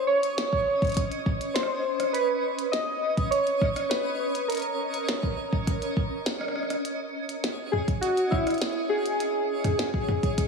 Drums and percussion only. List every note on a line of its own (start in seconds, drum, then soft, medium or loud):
0.23 closed hi-hat medium
0.38 snare loud
0.38 closed hi-hat medium
0.53 kick medium
0.82 kick loud
0.82 closed hi-hat soft
0.85 closed hi-hat soft
0.87 closed hi-hat soft
0.89 closed hi-hat soft
0.92 closed hi-hat soft
0.94 kick loud
0.94 closed hi-hat soft
0.97 closed hi-hat medium
1.12 closed hi-hat soft
1.26 kick loud
1.41 closed hi-hat soft
1.56 snare loud
1.56 closed hi-hat medium
1.63 cross-stick medium
2.00 cross-stick medium
2.00 closed hi-hat medium
2.15 closed hi-hat medium
2.59 closed hi-hat medium
2.73 snare loud
2.73 closed hi-hat medium
3.17 kick loud
3.17 closed hi-hat soft
3.32 closed hi-hat medium
3.47 closed hi-hat soft
3.62 kick loud
3.62 cross-stick soft
3.76 cross-stick soft
3.76 closed hi-hat soft
3.91 snare loud
3.91 closed hi-hat medium
4.35 closed hi-hat medium
4.50 closed hi-hat medium
4.52 closed hi-hat medium
4.55 closed hi-hat soft
4.57 closed hi-hat soft
4.60 closed hi-hat soft
4.62 closed hi-hat soft
4.94 closed hi-hat soft
5.09 snare loud
5.09 closed hi-hat medium
5.23 kick medium
5.53 kick loud
5.67 kick loud
5.67 closed hi-hat medium
5.82 closed hi-hat soft
5.97 kick loud
6.26 snare loud
6.26 closed hi-hat medium
6.41 cross-stick medium
6.48 cross-stick soft
6.56 cross-stick soft
6.63 cross-stick soft
6.70 cross-stick soft
6.70 closed hi-hat soft
6.85 closed hi-hat medium
7.29 closed hi-hat soft
7.44 snare loud
7.44 closed hi-hat medium
7.73 mid tom medium
7.88 kick loud
7.88 closed hi-hat soft
8.03 closed hi-hat medium
8.17 closed hi-hat soft
8.32 kick loud
8.32 cross-stick soft
8.47 cross-stick soft
8.47 closed hi-hat soft
8.50 closed hi-hat soft
8.54 closed hi-hat soft
8.58 snare loud
8.58 closed hi-hat soft
8.62 closed hi-hat medium
8.69 closed hi-hat soft
8.73 closed hi-hat soft
9.06 closed hi-hat soft
9.20 closed hi-hat medium
9.64 closed hi-hat medium
9.64 mid tom loud
9.79 snare loud
9.79 closed hi-hat medium
9.94 kick medium
10.09 mid tom medium
10.23 kick loud
10.23 closed hi-hat soft
10.38 kick loud
10.38 closed hi-hat medium